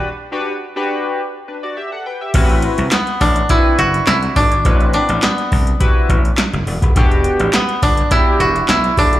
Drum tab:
CC |----------------|x---------------|----------------|----------------|
HH |----------------|xxxxxxoxx-xxxxox|xxxxxxoxx-xxxxox|xxxxxxoxx-xxxxox|
CP |----------------|----x-------x---|----x-------x---|----x-------x---|
SD |----------------|----o-------o---|----o-------o---|----o-------o---|
BD |----------------|o-----o-o-----o-|o-----o-o-o----o|o-----o-o-----o-|